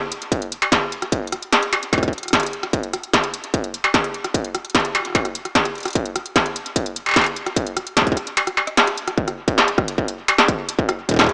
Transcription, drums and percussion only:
0.12 closed hi-hat medium
0.22 closed hi-hat soft
0.32 kick loud
0.32 closed hi-hat medium
0.42 closed hi-hat soft
0.52 closed hi-hat medium
0.62 closed hi-hat soft
0.62 struck metal medium
0.72 kick loud
0.72 snare loud
0.72 closed hi-hat medium
0.92 closed hi-hat soft
1.02 cross-stick medium
1.02 closed hi-hat soft
1.12 kick loud
1.12 closed hi-hat medium
1.27 closed hi-hat soft
1.32 cross-stick medium
1.32 closed hi-hat medium
1.42 closed hi-hat soft
1.53 snare loud
1.53 closed hi-hat medium
1.63 closed hi-hat soft
1.73 cross-stick soft
1.73 closed hi-hat medium
1.73 struck metal medium
1.83 closed hi-hat soft
1.93 kick loud
1.93 closed hi-hat medium
1.93 struck metal medium
1.98 kick medium
2.03 kick medium
2.03 cross-stick soft
2.03 closed hi-hat soft
2.08 kick medium
2.13 closed hi-hat soft
2.18 closed hi-hat soft
2.23 cross-stick soft
2.23 closed hi-hat soft
2.26 cross-stick soft
2.28 cross-stick soft
2.28 closed hi-hat soft
2.31 kick loud
2.31 cross-stick soft
2.31 snare loud
2.31 closed hi-hat medium
2.40 cross-stick soft
2.40 closed hi-hat medium
2.43 closed hi-hat soft
2.46 closed hi-hat medium
2.53 closed hi-hat soft
2.63 cross-stick soft
2.63 closed hi-hat soft
2.73 kick loud
2.73 closed hi-hat medium
2.83 closed hi-hat soft
2.93 cross-stick medium
2.93 closed hi-hat medium
3.03 closed hi-hat soft
3.14 kick medium
3.14 snare loud
3.14 closed hi-hat medium
3.24 closed hi-hat soft
3.34 closed hi-hat medium
3.44 closed hi-hat soft
3.54 kick loud
3.54 closed hi-hat medium
3.64 closed hi-hat soft
3.74 closed hi-hat medium
3.84 closed hi-hat soft
3.84 struck metal medium
3.94 kick loud
3.94 snare loud
3.94 closed hi-hat medium
4.04 closed hi-hat soft
4.14 closed hi-hat soft
4.24 cross-stick soft
4.24 closed hi-hat soft
4.34 kick medium
4.34 closed hi-hat medium
4.45 closed hi-hat soft
4.55 cross-stick medium
4.55 closed hi-hat medium
4.65 closed hi-hat soft
4.70 closed hi-hat soft
4.75 kick loud
4.75 snare loud
4.75 closed hi-hat medium
4.80 closed hi-hat soft
4.85 closed hi-hat soft
4.95 cross-stick soft
4.95 closed hi-hat medium
4.95 struck metal medium
4.97 cross-stick soft
5.00 cross-stick soft
5.02 cross-stick soft
5.02 closed hi-hat soft
5.07 cross-stick soft
5.10 cross-stick soft
5.12 kick loud
5.12 cross-stick soft
5.12 closed hi-hat medium
5.12 struck metal medium
5.25 cross-stick soft
5.25 closed hi-hat soft
5.35 closed hi-hat medium
5.45 cross-stick soft
5.45 closed hi-hat soft
5.55 kick medium
5.55 snare loud
5.55 closed hi-hat medium
5.65 cross-stick soft
5.65 closed hi-hat soft
5.75 closed hi-hat soft
5.78 closed hi-hat soft
5.80 closed hi-hat soft
5.83 cross-stick medium
5.83 closed hi-hat soft
5.85 closed hi-hat soft
5.88 closed hi-hat soft
5.90 closed hi-hat soft
5.93 kick loud
5.93 closed hi-hat soft
5.95 closed hi-hat medium
6.06 closed hi-hat soft
6.16 cross-stick medium
6.16 closed hi-hat medium
6.26 closed hi-hat soft
6.36 kick loud
6.36 snare loud
6.36 closed hi-hat medium
6.46 closed hi-hat soft
6.56 closed hi-hat medium
6.66 closed hi-hat soft
6.76 kick loud
6.76 closed hi-hat medium
6.86 closed hi-hat soft
6.96 closed hi-hat medium
7.06 closed hi-hat soft
7.06 struck metal soft
7.09 struck metal soft
7.11 struck metal medium
7.14 kick loud
7.14 snare loud
7.14 closed hi-hat medium
7.14 struck metal medium
7.16 struck metal medium
7.19 struck metal medium
7.21 struck metal medium
7.24 closed hi-hat soft
7.24 struck metal medium
7.36 closed hi-hat soft
7.46 cross-stick medium
7.46 closed hi-hat soft
7.56 kick loud
7.56 closed hi-hat medium
7.67 closed hi-hat soft
7.77 cross-stick medium
7.77 closed hi-hat medium
7.87 closed hi-hat soft
7.97 kick soft
7.97 snare loud
7.97 closed hi-hat loud
8.02 kick medium
8.07 kick medium
8.07 closed hi-hat soft
8.12 kick medium
8.17 cross-stick soft
8.17 closed hi-hat medium
8.27 closed hi-hat soft
8.37 closed hi-hat medium
8.37 struck metal medium
8.47 cross-stick medium
8.47 closed hi-hat soft
8.57 struck metal medium
8.67 cross-stick soft
8.67 closed hi-hat soft
8.77 snare loud
8.77 closed hi-hat medium
8.87 cross-stick soft
8.87 closed hi-hat soft
8.97 closed hi-hat soft
9.08 cross-stick medium
9.08 closed hi-hat soft
9.18 kick loud
9.28 cross-stick medium
9.28 closed hi-hat soft
9.48 kick loud
9.48 closed hi-hat medium
9.58 snare loud
9.68 closed hi-hat soft
9.78 kick loud
9.78 cross-stick medium
9.88 closed hi-hat medium
9.98 kick medium
10.08 closed hi-hat medium
10.28 closed hi-hat medium
10.28 struck metal medium
10.38 cross-stick medium
10.38 snare loud
10.48 kick loud
10.48 closed hi-hat medium
10.69 closed hi-hat medium
10.79 kick loud
10.89 cross-stick medium
10.89 closed hi-hat soft
11.09 kick medium
11.09 closed hi-hat medium
11.11 kick medium
11.14 kick medium
11.16 kick medium
11.19 kick medium
11.19 snare loud
11.21 kick medium
11.24 kick loud
11.26 kick loud
11.26 closed hi-hat soft

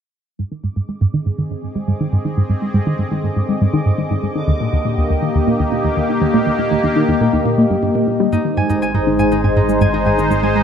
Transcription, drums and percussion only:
8.33 cabasa soft
8.70 cabasa medium
8.82 cabasa soft
9.19 cabasa medium
9.19 low woodblock medium
9.32 cabasa soft
9.69 cabasa medium
9.81 cabasa soft
10.06 low woodblock medium
10.18 cabasa medium
10.31 cabasa soft

